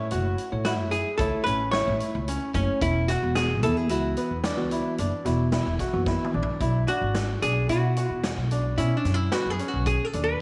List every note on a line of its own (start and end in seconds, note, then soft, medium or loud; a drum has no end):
0.00 0.13 A2 medium
0.00 0.25 A3 medium
0.00 0.25 E4 medium
0.00 0.26 C#5 medium
0.11 0.33 F#1 medium
0.11 0.53 F#4 medium
0.11 closed hi-hat medium
0.38 closed hi-hat medium
0.52 0.80 A2 medium
0.52 0.93 A3 medium
0.52 0.93 E4 medium
0.52 0.93 C#5 medium
0.65 1.07 E4 medium
0.65 0.72 F#4 medium
0.65 snare loud
0.65 closed hi-hat medium
0.80 1.01 F#2 medium
0.91 1.17 G#4 medium
0.91 closed hi-hat medium
1.18 1.30 C#2 medium
1.18 1.61 A3 medium
1.18 1.40 E4 medium
1.18 1.61 E4 medium
1.18 1.46 A4 medium
1.18 1.61 C#5 medium
1.18 kick loud
1.18 closed hi-hat medium
1.44 1.79 A1 medium
1.44 1.68 C#4 medium
1.44 1.70 B4 medium
1.44 closed hi-hat medium
1.71 2.15 E4 medium
1.71 1.98 C#5 loud
1.71 snare loud
1.71 closed hi-hat medium
1.87 1.98 A1 medium
1.87 2.28 A3 medium
1.87 2.28 E4 medium
1.87 2.28 C#5 medium
2.00 closed hi-hat medium
2.15 2.36 C#2 medium
2.28 2.49 C#4 medium
2.28 closed hi-hat medium
2.54 2.66 F#1 medium
2.54 2.82 A3 medium
2.54 2.82 C#4 medium
2.54 2.96 C#4 medium
2.54 2.82 E4 medium
2.54 2.82 C#5 medium
2.54 kick medium
2.54 closed hi-hat medium
2.81 3.15 E1 medium
2.81 3.10 E4 medium
2.81 kick loud
2.81 closed hi-hat medium
3.08 3.35 F#4 medium
3.08 3.50 F#4 medium
3.08 snare soft
3.08 closed hi-hat medium
3.23 3.64 E1 medium
3.23 3.63 E3 medium
3.23 3.63 B3 medium
3.23 3.63 F#4 medium
3.35 3.63 G#4 loud
3.35 snare loud
3.35 closed hi-hat medium
3.63 3.91 E2 medium
3.63 3.84 E4 medium
3.63 3.77 A4 medium
3.63 closed hi-hat medium
3.77 3.91 G#4 loud
3.89 4.12 C#2 medium
3.89 4.31 E3 medium
3.89 4.31 B3 medium
3.89 4.11 E4 medium
3.89 4.31 F#4 medium
3.89 6.07 F#4 medium
3.89 closed hi-hat medium
4.17 4.38 B3 medium
4.17 closed hi-hat medium
4.31 4.58 E2 medium
4.44 4.65 D4 medium
4.44 snare loud
4.44 closed hi-hat medium
4.57 4.80 C#2 medium
4.57 4.98 E3 medium
4.57 4.98 B3 medium
4.57 4.98 F#4 loud
4.71 4.92 E4 medium
4.71 closed hi-hat medium
4.98 5.10 F#1 medium
4.98 5.19 D4 medium
4.98 closed hi-hat medium
5.25 5.58 E1 medium
5.25 5.66 E3 medium
5.25 5.66 B3 medium
5.25 5.46 E4 medium
5.25 5.66 F#4 loud
5.25 snare soft
5.25 closed hi-hat medium
5.52 5.73 E4 medium
5.52 snare loud
5.52 closed hi-hat medium
5.67 5.77 E1 medium
5.79 6.01 F#4 medium
5.79 kick medium
5.79 snare soft
5.79 closed hi-hat medium
5.93 6.15 F#1 medium
5.93 6.34 E3 medium
5.93 6.34 B3 medium
5.93 6.34 F#4 loud
6.06 6.28 E4 medium
6.06 kick loud
6.06 snare medium
6.24 mid tom medium
6.34 6.45 A#1 medium
6.34 6.55 D4 medium
6.43 floor tom loud
6.61 6.83 B1 medium
6.61 6.82 E4 medium
6.61 kick loud
6.61 closed hi-hat medium
6.88 7.29 D4 medium
6.88 7.42 F#4 medium
6.88 closed hi-hat medium
7.01 7.34 G#1 medium
7.15 snare loud
7.15 closed hi-hat medium
7.42 7.64 B1 medium
7.42 7.63 D4 medium
7.42 7.68 G#4 medium
7.42 closed hi-hat medium
7.69 8.02 B2 medium
7.69 7.90 E4 medium
7.69 8.20 F#4 medium
7.69 closed hi-hat medium
7.96 8.38 F#4 medium
7.96 closed hi-hat medium
8.09 8.32 E2 medium
8.24 snare loud
8.24 closed hi-hat medium
8.36 8.79 B1 medium
8.51 8.72 D4 medium
8.51 closed hi-hat medium
8.77 8.89 B2 medium
8.77 9.20 C#4 medium
8.77 8.97 E4 medium
8.77 closed hi-hat medium
8.97 9.14 D4 medium
9.05 9.27 F#2 medium
9.05 snare soft
9.05 closed hi-hat medium
9.14 9.32 E4 medium
9.32 9.53 B3 medium
9.32 9.50 F#4 medium
9.32 snare medium
9.32 closed hi-hat medium
9.46 9.57 F#2 medium
9.50 9.68 G#4 medium
9.59 10.01 C#4 medium
9.59 closed hi-hat medium
9.68 9.87 F#4 medium
9.74 9.95 B1 medium
9.86 10.05 G#4 medium
9.86 kick loud
9.86 closed hi-hat medium
10.05 10.23 A4 medium
10.13 10.36 D#2 medium
10.13 10.34 D4 medium
10.13 closed hi-hat soft
10.24 10.41 B4 medium